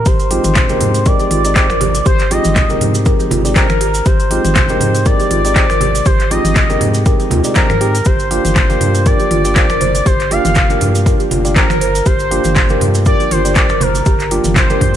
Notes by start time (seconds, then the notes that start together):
0.06 G#1 G4 C5, kick, closed hi-hat, cabasa
0.20 closed hi-hat, cabasa
0.31 G#3 C4 D#4 F4 G4, open hi-hat, high conga
0.44 G#1, closed hi-hat, mid tom, cabasa
0.55 finger snap, kick, clap, closed hi-hat, low conga, cabasa
0.69 G#3 C4 D#4 G4 A#4, closed hi-hat, high conga, cabasa
0.81 G#2, open hi-hat, low conga
0.94 closed hi-hat, cabasa
1.06 G#3 C4 D#4 G4 A#4 D5, kick, closed hi-hat, high conga, cabasa
1.19 G4, closed hi-hat, cabasa
1.31 G#1 F4, open hi-hat, mid tom
1.44 G#3 C4 D#4 G4 D5, closed hi-hat, cabasa
1.55 G#3 C4 D#4 G4 C5, finger snap, kick, clap, closed hi-hat, cabasa
1.69 G#1 A#4, finger snap, high conga, cabasa
1.81 G4, open hi-hat, low conga
1.95 closed hi-hat, cabasa
2.05 G#1 G4 C5, kick, closed hi-hat, cabasa
2.19 clap, closed hi-hat, cabasa
2.31 G#3 C4 D#4 F4 G4 D#5, open hi-hat, high conga
2.44 G#1, closed hi-hat, mid tom, high conga, cabasa
2.56 finger snap, kick, clap, closed hi-hat, low conga, cabasa
2.70 G#3 C4 D#4 G4 A#4, closed hi-hat, high conga, cabasa
2.81 G#2, open hi-hat, low conga
2.95 closed hi-hat, cabasa
3.05 G#3 C4 D#4 G4 A#4, kick, closed hi-hat, high conga, cabasa
3.19 G4, closed hi-hat, cabasa
3.31 G#1 F4, open hi-hat, low conga
3.45 G#3 C4 D#4 G4 D5, closed hi-hat, cabasa
3.56 G#3 C4 D#4 G4 A#4 C5, finger snap, kick, clap, closed hi-hat, high conga, cabasa
3.70 G#1 A#4, finger snap, mid tom, cabasa
3.81 G4, open hi-hat
3.94 closed hi-hat, cabasa
4.06 G#1 G4 C5, kick, closed hi-hat, cabasa
4.20 closed hi-hat, cabasa
4.31 G#3 C4 D#4 F4 G4, open hi-hat, high conga
4.45 G#1, closed hi-hat, mid tom, cabasa
4.56 finger snap, kick, clap, closed hi-hat, low conga, cabasa
4.69 G#3 C4 D#4 G4 A#4, closed hi-hat, high conga, cabasa
4.80 G#2, open hi-hat, low conga
4.95 closed hi-hat, cabasa
5.05 G#3 C4 D#4 G4 A#4 D5, kick, closed hi-hat, high conga, cabasa
5.20 G4, closed hi-hat, cabasa
5.31 G#1 F4, open hi-hat, mid tom
5.45 G#3 C4 D#4 G4 D5, closed hi-hat, cabasa
5.56 G#3 C4 D#4 G4 C5, finger snap, kick, clap, closed hi-hat, cabasa
5.70 G#1 A#4, finger snap, high conga, cabasa
5.81 G4, open hi-hat, low conga
5.95 closed hi-hat, cabasa
6.05 G#1 G4 C5, kick, closed hi-hat, cabasa
6.20 clap, closed hi-hat, cabasa
6.31 G#3 C4 D#4 F4 G4 D#5, open hi-hat, high conga
6.44 G#1, closed hi-hat, mid tom, high conga, cabasa
6.56 finger snap, kick, clap, closed hi-hat, low conga, cabasa
6.69 G#3 C4 D#4 G4 A#4, closed hi-hat, high conga, cabasa
6.81 G#2, open hi-hat, low conga
6.94 closed hi-hat, cabasa
7.06 G#3 C4 D#4 G4 A#4, kick, closed hi-hat, high conga, cabasa
7.20 G4, closed hi-hat, cabasa
7.31 D#2 F4, open hi-hat, low conga
7.44 G#3 C4 D#4 G4 D5, closed hi-hat, cabasa
7.55 C4 G4 A#4 C5, finger snap, kick, clap, closed hi-hat, high conga, cabasa
7.69 G#2 A#4, finger snap, mid tom, cabasa
7.81 G#3 C4 D#4 G4, open hi-hat
7.95 closed hi-hat, cabasa
8.05 G1 G4 C5, kick, closed hi-hat, cabasa
8.19 closed hi-hat, cabasa
8.31 A#3 D4 F4 G4, open hi-hat, high conga
8.45 G1, closed hi-hat, mid tom, cabasa
8.56 finger snap, kick, clap, closed hi-hat, low conga, cabasa
8.69 A#3 D4 F4 G4 A#4, closed hi-hat, high conga, cabasa
8.81 G2, open hi-hat, low conga
8.95 closed hi-hat, cabasa
9.06 A#3 D4 F4 G4 A#4 D5, kick, closed hi-hat, high conga, cabasa
9.20 G4, closed hi-hat, cabasa
9.31 G1 F4, open hi-hat, mid tom
9.45 A#3 D4 F4 G4 D5, closed hi-hat, cabasa
9.56 A#3 D4 F4 G4 C5, finger snap, kick, clap, closed hi-hat, cabasa
9.70 G1 A#4, finger snap, high conga, cabasa
9.81 C5, open hi-hat, low conga
9.95 closed hi-hat, cabasa
10.06 G1 G4 C5, kick, closed hi-hat, cabasa
10.20 clap, closed hi-hat, cabasa
10.31 A#3 D4 F4 G4 F5, open hi-hat, high conga
10.45 G1, closed hi-hat, mid tom, high conga, cabasa
10.55 finger snap, kick, clap, closed hi-hat, low conga, cabasa
10.70 A#3 D4 F4 G4 A#4, closed hi-hat, high conga, cabasa
10.81 G2, open hi-hat, low conga
10.95 closed hi-hat, cabasa
11.06 A#3 D4 F4 G4 A#4, kick, closed hi-hat, high conga, cabasa
11.20 G4, closed hi-hat, cabasa
11.31 G1 F4, open hi-hat, low conga
11.44 A#3 D4 F4 G4 D5, closed hi-hat, cabasa
11.56 A#3 D4 F4 G4 A#4 C5, finger snap, kick, clap, closed hi-hat, high conga, cabasa
11.69 G1 A#4, finger snap, mid tom, cabasa
11.81 C5, open hi-hat
11.95 closed hi-hat, cabasa
12.06 G1 G4 C5, kick, closed hi-hat, cabasa
12.19 closed hi-hat, cabasa
12.31 A#3 D4 F4 G4, open hi-hat, high conga
12.44 G1, closed hi-hat, mid tom, cabasa
12.56 finger snap, kick, clap, closed hi-hat, low conga, cabasa
12.69 A#3 D4 F4 G4 A#4, closed hi-hat, high conga, cabasa
12.81 G2, open hi-hat, low conga
12.94 closed hi-hat, cabasa
13.05 A#3 D4 F4 G4 A#4 D5, kick, closed hi-hat, high conga, cabasa
13.20 G4, closed hi-hat, cabasa
13.31 G1 F4 C5, open hi-hat, mid tom
13.45 A#3 D4 F4 G4 D5, closed hi-hat, cabasa
13.55 A#3 D4 F4 G4 C5 D5, finger snap, kick, clap, closed hi-hat, cabasa
13.69 G1 A#4, finger snap, high conga, cabasa
13.81 A#4 C5, open hi-hat, low conga
13.95 closed hi-hat, cabasa
14.06 G1 G4, kick, closed hi-hat, cabasa
14.20 clap, closed hi-hat, cabasa
14.31 A#3 D4 F4 G4, open hi-hat, high conga
14.44 G1, closed hi-hat, mid tom, high conga, cabasa
14.55 C5, finger snap, kick, clap, closed hi-hat, low conga, cabasa
14.70 A#3 D4 F4 G4 A#4, closed hi-hat, high conga, cabasa
14.81 G2, kick, open hi-hat, low conga